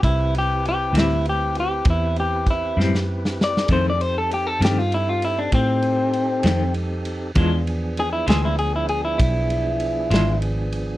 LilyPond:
<<
  \new Staff \with { instrumentName = "Clean electric guitar" } { \time 12/8 \key a \minor \tempo 4. = 65 e'8 g'8 g'8 e'8 g'8 g'8 e'8 g'8 e'8 r4 d''8 | c''16 d''16 c''16 a'16 g'16 a'16 g'16 f'16 e'16 f'16 e'16 d'16 c'2 r4 | r4 gis'16 e'16 gis'16 e'16 gis'16 e'16 gis'16 e'16 e'2 r4 | }
  \new Staff \with { instrumentName = "Tonewheel organ" } { \time 12/8 \key a \minor <c' e' g' b'>1. | <cis' e' gis' bes'>8 <c' ees' g' a'>1~ <c' ees' g' a'>4. | <f b d' gis'>1. | }
  \new Staff \with { instrumentName = "Clean electric guitar" } { \clef bass \time 12/8 \key a \minor r4. <a, g c' e'>8 r2 r8 <a, g c' e'>8 r4 | <f, ees a c'>8 r4 <f, ees a c'>8 r2 r8 <f, ees a c'>8 r4 | <e gis d' f'>8 r4 <e gis d' f'>8 r2 r8 <e gis d' f'>8 r4 | }
  \new Staff \with { instrumentName = "Fingered electric bass" } { \clef bass \time 12/8 \key a \minor c,4. d,4. e,4. fis,4. | f,4. g,4. a,4. f,4. | e,4. d,4. b,,4. gis,,4. | }
  \new DrumStaff \with { instrumentName = "Drums" } \drummode { \time 12/8 <bd cymr>8 cymr8 cymr8 <cymr sn>8 cymr8 cymr8 <bd cymr>8 cymr8 <bd cymr>8 sn16 sn8 sn16 sn16 sn16 | <bd cymr>8 cymr8 cymr8 <cymr sn>8 cymr8 cymr8 <bd cymr>8 cymr8 cymr8 <cymr sn>8 cymr8 cymr8 | <bd cymr>8 cymr8 cymr8 <cymr sn>8 cymr8 cymr8 <bd cymr>8 cymr8 cymr8 <cymr sn>8 cymr8 cymr8 | }
>>